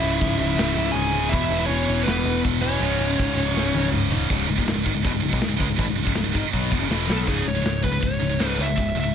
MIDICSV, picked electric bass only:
0, 0, Header, 1, 2, 480
1, 0, Start_track
1, 0, Key_signature, 4, "minor"
1, 0, Tempo, 372439
1, 1703, Time_signature, 4, 2, 24, 8
1, 11789, End_track
2, 0, Start_track
2, 0, Title_t, "Picked electric bass"
2, 0, Program_c, 0, 34
2, 19, Note_on_c, 0, 25, 97
2, 229, Note_off_c, 0, 25, 0
2, 270, Note_on_c, 0, 25, 92
2, 475, Note_off_c, 0, 25, 0
2, 493, Note_on_c, 0, 25, 105
2, 705, Note_off_c, 0, 25, 0
2, 744, Note_on_c, 0, 25, 94
2, 951, Note_off_c, 0, 25, 0
2, 984, Note_on_c, 0, 25, 103
2, 1190, Note_off_c, 0, 25, 0
2, 1208, Note_on_c, 0, 26, 80
2, 1719, Note_off_c, 0, 26, 0
2, 1719, Note_on_c, 0, 28, 114
2, 1918, Note_off_c, 0, 28, 0
2, 1940, Note_on_c, 0, 28, 96
2, 2147, Note_off_c, 0, 28, 0
2, 2178, Note_on_c, 0, 28, 93
2, 2386, Note_off_c, 0, 28, 0
2, 2422, Note_on_c, 0, 28, 95
2, 2628, Note_off_c, 0, 28, 0
2, 2665, Note_on_c, 0, 28, 89
2, 2869, Note_off_c, 0, 28, 0
2, 2901, Note_on_c, 0, 28, 95
2, 3106, Note_off_c, 0, 28, 0
2, 3156, Note_on_c, 0, 28, 91
2, 3561, Note_off_c, 0, 28, 0
2, 3612, Note_on_c, 0, 25, 101
2, 3820, Note_off_c, 0, 25, 0
2, 3846, Note_on_c, 0, 25, 105
2, 4057, Note_off_c, 0, 25, 0
2, 4115, Note_on_c, 0, 25, 89
2, 4306, Note_off_c, 0, 25, 0
2, 4314, Note_on_c, 0, 25, 101
2, 4530, Note_off_c, 0, 25, 0
2, 4564, Note_on_c, 0, 25, 95
2, 4775, Note_off_c, 0, 25, 0
2, 4826, Note_on_c, 0, 25, 99
2, 5028, Note_off_c, 0, 25, 0
2, 5049, Note_on_c, 0, 25, 88
2, 5465, Note_off_c, 0, 25, 0
2, 5549, Note_on_c, 0, 25, 93
2, 5761, Note_off_c, 0, 25, 0
2, 5769, Note_on_c, 0, 25, 82
2, 5883, Note_off_c, 0, 25, 0
2, 5904, Note_on_c, 0, 27, 83
2, 6003, Note_off_c, 0, 27, 0
2, 6011, Note_on_c, 0, 25, 82
2, 6124, Note_off_c, 0, 25, 0
2, 6131, Note_on_c, 0, 25, 73
2, 6243, Note_off_c, 0, 25, 0
2, 6265, Note_on_c, 0, 32, 103
2, 6365, Note_off_c, 0, 32, 0
2, 6373, Note_on_c, 0, 25, 77
2, 6485, Note_off_c, 0, 25, 0
2, 6507, Note_on_c, 0, 28, 101
2, 6612, Note_off_c, 0, 28, 0
2, 6623, Note_on_c, 0, 25, 82
2, 6730, Note_off_c, 0, 25, 0
2, 6741, Note_on_c, 0, 25, 80
2, 6849, Note_off_c, 0, 25, 0
2, 6873, Note_on_c, 0, 35, 105
2, 6971, Note_off_c, 0, 35, 0
2, 6979, Note_on_c, 0, 25, 72
2, 7088, Note_off_c, 0, 25, 0
2, 7101, Note_on_c, 0, 25, 81
2, 7209, Note_off_c, 0, 25, 0
2, 7227, Note_on_c, 0, 37, 98
2, 7333, Note_off_c, 0, 37, 0
2, 7340, Note_on_c, 0, 25, 80
2, 7449, Note_off_c, 0, 25, 0
2, 7460, Note_on_c, 0, 33, 102
2, 7565, Note_off_c, 0, 33, 0
2, 7572, Note_on_c, 0, 25, 74
2, 7685, Note_off_c, 0, 25, 0
2, 7696, Note_on_c, 0, 25, 85
2, 7807, Note_off_c, 0, 25, 0
2, 7822, Note_on_c, 0, 25, 85
2, 7921, Note_off_c, 0, 25, 0
2, 7928, Note_on_c, 0, 25, 78
2, 8043, Note_off_c, 0, 25, 0
2, 8069, Note_on_c, 0, 25, 79
2, 8174, Note_off_c, 0, 25, 0
2, 8182, Note_on_c, 0, 32, 102
2, 8291, Note_off_c, 0, 32, 0
2, 8425, Note_on_c, 0, 35, 87
2, 8644, Note_off_c, 0, 35, 0
2, 8666, Note_on_c, 0, 28, 81
2, 8773, Note_off_c, 0, 28, 0
2, 8788, Note_on_c, 0, 30, 103
2, 8885, Note_off_c, 0, 30, 0
2, 8892, Note_on_c, 0, 28, 85
2, 9118, Note_off_c, 0, 28, 0
2, 9128, Note_on_c, 0, 35, 85
2, 9356, Note_off_c, 0, 35, 0
2, 9381, Note_on_c, 0, 25, 85
2, 9601, Note_off_c, 0, 25, 0
2, 9607, Note_on_c, 0, 25, 77
2, 9834, Note_off_c, 0, 25, 0
2, 9849, Note_on_c, 0, 25, 78
2, 10076, Note_off_c, 0, 25, 0
2, 10105, Note_on_c, 0, 37, 84
2, 10325, Note_off_c, 0, 37, 0
2, 10345, Note_on_c, 0, 25, 86
2, 10562, Note_off_c, 0, 25, 0
2, 10569, Note_on_c, 0, 25, 83
2, 10797, Note_off_c, 0, 25, 0
2, 10811, Note_on_c, 0, 25, 76
2, 11038, Note_off_c, 0, 25, 0
2, 11058, Note_on_c, 0, 37, 84
2, 11283, Note_off_c, 0, 37, 0
2, 11314, Note_on_c, 0, 25, 99
2, 11532, Note_off_c, 0, 25, 0
2, 11558, Note_on_c, 0, 25, 82
2, 11775, Note_off_c, 0, 25, 0
2, 11789, End_track
0, 0, End_of_file